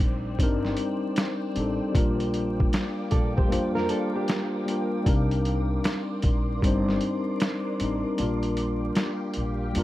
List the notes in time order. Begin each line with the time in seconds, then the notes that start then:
Already playing: G3 C4 D4 D#4 A#4 C5 D5 G5 D6
0.00 A#1, kick
0.38 G1 G3 C4 D4 D#4, kick, closed hi-hat
0.43 A#4
0.65 snare
0.77 closed hi-hat
1.16 snare, closed hi-hat
1.54 A1 G3 C4 D4 D#4, closed hi-hat
1.59 A4
1.92 A#1 G3 A#3 D4 F4 A#4 F5 G5, kick, closed hi-hat
1.97 A#4
2.20 closed hi-hat
2.34 closed hi-hat
2.60 kick
2.73 snare, closed hi-hat
3.11 A#1 A4 D5, kick, closed hi-hat
3.37 G4 C5, kick
3.48 F2 G3 A#3 D4 F4
3.52 C5, closed hi-hat
3.75 F4 A#4, snare
3.89 D4 A4, closed hi-hat
4.15 D4 G4
4.28 snare, closed hi-hat
4.66 G3 A#3 D4, closed hi-hat
4.70 F4 A#4
5.04 C2 G3 C4 D4 D#4 D5 C6, kick, closed hi-hat
5.09 A#4
5.31 closed hi-hat
5.45 closed hi-hat
5.84 snare, closed hi-hat
6.22 A#1, kick, closed hi-hat
6.62 G1 G3 C4 D4 D#4, kick, closed hi-hat
6.67 C5
6.89 snare
7.01 closed hi-hat
7.40 snare, closed hi-hat
7.79 A1 G3 C4 D4, closed hi-hat
7.83 D#4 A#4
8.17 A#1 G3 A#3 D4 F4 G4 F5 G5, closed hi-hat
8.22 A#4
8.43 closed hi-hat
8.57 closed hi-hat
8.95 snare, closed hi-hat
9.33 A#1, closed hi-hat
9.73 F2 G3 A#3 D4, closed hi-hat
9.78 F4 A#4